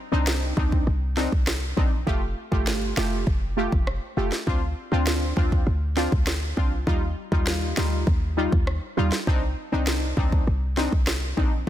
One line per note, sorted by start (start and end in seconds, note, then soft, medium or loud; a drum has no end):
0.12 0.53 C2 medium
0.12 0.53 C4 medium
0.12 0.53 D4 medium
0.12 0.54 D#4 medium
0.27 finger snap medium
0.27 snare loud
0.57 0.84 D2 medium
0.57 0.85 C4 medium
0.57 0.85 D4 medium
0.57 0.85 D#4 medium
0.57 kick medium
0.72 kick medium
0.87 1.28 C2 loud
1.17 1.32 C4 medium
1.17 1.32 D4 medium
1.17 1.32 D#4 medium
1.17 snare medium
1.32 1.73 C2 medium
1.32 kick medium
1.47 finger snap medium
1.47 cross-stick medium
1.47 snare loud
1.77 2.04 A#1 medium
1.77 1.92 C4 medium
1.77 1.92 D4 medium
1.77 1.92 D#4 medium
1.77 kick medium
2.07 2.34 F1 loud
2.07 2.22 A3 loud
2.07 2.22 F4 medium
2.07 2.22 G4 loud
2.07 kick loud
2.52 2.93 G1 loud
2.52 2.93 A3 medium
2.52 2.93 F4 medium
2.52 2.94 G4 medium
2.52 kick medium
2.67 finger snap medium
2.67 snare loud
2.97 3.24 F1 medium
2.97 3.25 A3 medium
2.97 3.25 F4 medium
2.97 3.25 G4 medium
2.97 finger snap medium
2.97 snare loud
3.27 3.68 F1 loud
3.27 kick medium
3.57 3.72 A3 medium
3.57 3.72 F4 medium
3.57 3.72 G4 medium
3.72 3.99 F1 medium
3.72 kick medium
3.87 cross-stick medium
4.17 4.31 F1 medium
4.17 4.32 A3 medium
4.17 4.32 F4 medium
4.17 4.32 G4 medium
4.32 snare medium
4.47 4.74 D2 loud
4.47 4.62 C4 medium
4.47 4.62 D4 medium
4.47 4.62 F4 loud
4.47 kick loud
4.92 5.33 D2 loud
4.92 5.33 C4 medium
4.92 5.33 D4 medium
4.92 5.34 F4 medium
5.07 finger snap medium
5.07 snare loud
5.37 5.64 D#2 medium
5.37 5.64 C4 medium
5.37 5.65 D4 medium
5.37 5.65 F4 medium
5.37 kick loud
5.52 kick medium
5.67 6.08 D2 loud
5.96 6.12 C4 medium
5.96 6.12 D4 medium
5.96 6.12 F4 medium
5.96 snare medium
6.12 6.53 D2 medium
6.12 kick medium
6.27 finger snap medium
6.27 cross-stick medium
6.27 snare loud
6.57 6.84 C2 loud
6.57 6.72 C4 medium
6.57 6.72 D4 medium
6.57 6.72 F4 medium
6.57 kick medium
6.87 7.14 D#2 loud
6.87 7.02 G3 loud
6.87 7.02 D#4 medium
6.87 7.02 F4 loud
6.87 kick loud
7.32 7.73 D#2 medium
7.32 7.73 G3 medium
7.32 7.74 D#4 medium
7.32 7.74 F4 medium
7.32 kick medium
7.47 finger snap medium
7.47 snare loud
7.77 8.04 D2 medium
7.77 8.05 G3 medium
7.77 8.05 D#4 medium
7.77 8.05 F4 medium
7.77 finger snap medium
7.77 snare loud
8.07 8.48 D#2 loud
8.07 kick loud
8.37 8.52 G3 medium
8.37 8.52 D#4 medium
8.37 8.52 F4 medium
8.52 8.79 D#2 medium
8.52 kick medium
8.67 cross-stick medium
8.97 9.11 D#2 medium
8.97 9.12 G3 medium
8.97 9.12 D#4 medium
8.97 9.12 F4 medium
9.12 snare medium
9.27 9.54 C2 loud
9.27 9.42 C4 loud
9.27 9.42 D4 medium
9.27 9.42 D#4 loud
9.27 kick loud
9.72 10.13 C2 medium
9.72 10.14 C4 medium
9.72 10.14 D4 medium
9.72 10.14 D#4 medium
9.87 finger snap medium
9.87 snare loud
10.17 10.44 D2 medium
10.17 10.45 C4 medium
10.17 10.45 D4 medium
10.17 10.45 D#4 medium
10.17 kick medium
10.32 kick medium
10.47 10.88 C2 loud
10.77 10.92 C4 medium
10.77 10.92 D4 medium
10.77 10.92 D#4 medium
10.77 snare medium
10.92 11.33 C2 medium
10.92 kick medium
11.07 finger snap medium
11.07 cross-stick medium
11.07 snare loud
11.37 11.64 A#1 medium
11.37 11.52 C4 medium
11.37 11.52 D4 medium
11.37 11.52 D#4 medium
11.37 kick medium